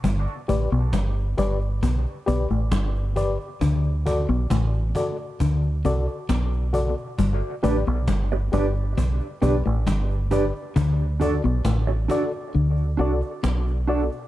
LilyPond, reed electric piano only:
\new Staff \with { instrumentName = "Reed electric piano" } { \time 4/4 \key g \major \tempo 4 = 67 r8 <g' b' d''>16 r8. <g' b' d''>16 r8. <g' b' d''>16 <b' d''>16 r8 <g' b' d''>16 r16 | r8 <fis' a' d''>16 r8. <fis' a' d''>16 r8. <fis' a' d''>16 <a' d''>16 r8 <fis' a' d''>16 r16 | r8 <g' b' d''>16 r8. <g' b' d''>16 r8. <g' b' d''>16 <b' d''>16 r8 <g' b' d''>16 r16 | r8 <fis' a' d''>16 r8. <fis' a' d''>16 r8. <fis' a' d''>16 <a' d''>16 r8 <fis' a' d''>16 r16 | }